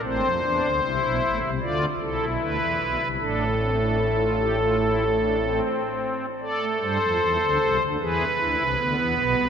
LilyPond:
<<
  \new Staff \with { instrumentName = "Pipe organ" } { \time 4/4 \key a \minor \tempo 4 = 76 << { c''2 d''8 a'8 b'4 | a'2.~ a'8 r8 | d''8 c''4. b'2 | } \\ { c'8 d'8 e'4 f'8 e'4. | d'8 c'16 d'16 e'16 f'16 g'16 f'16 e'8 d'16 c'4~ c'16 | a'2 gis'8 e'8 b4 | } >> }
  \new Staff \with { instrumentName = "Pipe organ" } { \clef bass \time 4/4 \key a \minor <a,, a,>16 <f, f>16 <e, e>16 <d, d>16 <c, c>16 <b,, b,>16 <a,, a,>16 <c, c>16 <d, d>8 <c, c>16 <b,, b,>16 <d, d>16 <e, e>16 <b,, b,>16 <c, c>16 | <a,, a,>2.~ <a,, a,>8 r8 | r16 a16 <g, g>16 <f, f>16 <e, e>16 <d, d>16 <c, c>16 <d, d>16 <e, e>8 <d, d>16 <c, c>16 <d, d>16 <e, e>16 <b,, b,>16 <c, c>16 | }
>>